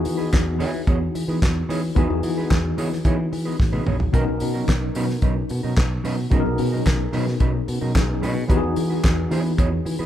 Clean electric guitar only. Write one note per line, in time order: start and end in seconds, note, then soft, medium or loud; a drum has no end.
0.04 muted clean electric guitar stroke soft
0.17 0.29 B3 soft
0.17 0.29 D#4 medium
0.17 0.29 G#4 medium
0.17 0.29 B4 medium
0.46 muted clean electric guitar stroke medium
0.59 0.72 B3 medium
0.59 0.73 D#4 medium
0.59 0.73 G#4 medium
0.59 0.73 C#5 loud
0.73 muted clean electric guitar stroke soft
0.87 1.00 B3 medium
0.87 1.01 D#4 medium
0.87 1.00 G#4 medium
0.87 1.01 C#5 medium
1.01 muted clean electric guitar stroke soft
1.14 muted clean electric guitar stroke soft
1.28 1.39 B3 medium
1.28 1.39 D#4 soft
1.28 1.39 G#4 soft
1.28 1.38 B4 medium
1.42 muted clean electric guitar stroke soft
1.56 muted clean electric guitar stroke soft
1.69 1.82 B3 medium
1.69 1.82 D#4 medium
1.69 1.82 G#4 medium
1.69 1.83 C#5 medium
1.83 muted clean electric guitar stroke soft
1.96 2.09 B3 medium
1.96 2.09 D#4 medium
1.96 2.10 G#4 loud
1.96 2.09 B4 loud
2.10 muted clean electric guitar stroke soft
2.24 muted clean electric guitar stroke soft
2.38 2.48 B3 soft
2.38 2.48 D#4 soft
2.38 2.48 G#4 medium
2.38 2.47 B4 medium
2.65 muted clean electric guitar stroke medium
2.77 2.91 B3 medium
2.77 2.91 D#4 medium
2.77 2.91 G#4 medium
2.77 2.91 C#5 medium
2.91 muted clean electric guitar stroke medium
3.05 3.18 B3 medium
3.05 3.18 D#4 medium
3.05 3.18 G#4 medium
3.05 3.19 C#5 medium
3.19 muted clean electric guitar stroke soft
3.32 muted clean electric guitar stroke soft
3.45 3.56 B3 medium
3.45 3.56 D#4 medium
3.45 3.56 G#4 medium
3.45 3.56 B4 medium
3.59 muted clean electric guitar stroke soft
3.73 3.84 B3 medium
3.73 3.85 D#4 medium
3.73 3.86 G#4 medium
3.73 3.86 B4 medium
3.86 3.96 B3 medium
3.86 3.97 D#4 medium
3.86 3.97 G#4 medium
3.86 3.97 C#5 medium
3.99 muted clean electric guitar stroke soft
4.13 4.26 F#3 medium
4.13 4.27 C#4 medium
4.13 4.26 D#4 medium
4.13 4.26 A#4 loud
4.27 muted clean electric guitar stroke soft
4.41 muted clean electric guitar stroke soft
4.54 4.65 F#3 soft
4.54 4.65 C#4 soft
4.54 4.65 D#4 soft
4.54 4.64 A#4 soft
4.81 muted clean electric guitar stroke soft
4.95 5.08 F#3 medium
4.95 5.08 C#4 medium
4.95 5.08 D#4 medium
4.95 5.08 B4 medium
5.09 muted clean electric guitar stroke soft
5.22 5.35 F#3 medium
5.22 5.36 C#4 medium
5.22 5.36 D#4 medium
5.22 5.36 B4 medium
5.36 muted clean electric guitar stroke medium
5.50 muted clean electric guitar stroke soft
5.63 5.74 F#3 soft
5.63 5.74 C#4 soft
5.63 5.74 D#4 medium
5.63 5.74 A#4 medium
5.77 muted clean electric guitar stroke soft
5.91 muted clean electric guitar stroke soft
6.04 6.17 F#3 medium
6.04 6.17 C#4 loud
6.04 6.17 D#4 medium
6.04 6.18 B4 loud
6.18 muted clean electric guitar stroke soft
6.31 6.44 F#3 medium
6.31 6.44 C#4 medium
6.31 6.44 D#4 medium
6.31 6.44 A#4 medium
6.45 muted clean electric guitar stroke soft
6.59 muted clean electric guitar stroke soft
6.72 6.83 F#3 soft
6.72 6.83 C#4 soft
6.72 6.83 D#4 soft
6.72 6.83 A#4 medium
6.99 muted clean electric guitar stroke soft
7.12 7.26 F#3 medium
7.12 7.26 C#4 medium
7.12 7.27 D#4 loud
7.12 7.27 B4 medium
7.27 muted clean electric guitar stroke medium
7.40 7.53 F#3 medium
7.40 7.54 C#4 medium
7.40 7.53 D#4 medium
7.40 7.53 B4 medium
7.54 muted clean electric guitar stroke soft
7.67 muted clean electric guitar stroke soft
7.81 7.92 F#3 soft
7.81 7.92 C#4 medium
7.81 7.92 D#4 medium
7.81 7.92 A#4 medium
7.95 muted clean electric guitar stroke soft
8.09 muted clean electric guitar stroke soft
8.22 8.35 F#3 medium
8.22 8.35 C#4 loud
8.22 8.35 D#4 medium
8.22 8.36 B4 loud
8.36 muted clean electric guitar stroke soft
8.49 8.62 B3 medium
8.49 8.63 D#4 medium
8.49 8.62 G#4 medium
8.49 8.62 B4 medium
8.63 muted clean electric guitar stroke soft
8.77 muted clean electric guitar stroke soft
8.90 9.01 B3 medium
8.90 9.01 D#4 soft
8.90 9.01 G#4 medium
8.90 9.00 B4 medium
9.17 muted clean electric guitar stroke soft
9.31 9.51 B3 medium
9.31 9.44 D#4 medium
9.31 9.44 G#4 medium
9.31 9.44 C#5 medium
9.45 muted clean electric guitar stroke soft
9.58 9.71 B3 medium
9.58 9.72 D#4 medium
9.58 9.71 G#4 medium
9.58 9.71 C#5 medium
9.72 muted clean electric guitar stroke medium
9.85 muted clean electric guitar stroke soft
9.99 10.06 B3 medium
9.99 10.06 D#4 medium
9.99 10.06 G#4 soft
9.99 10.06 B4 medium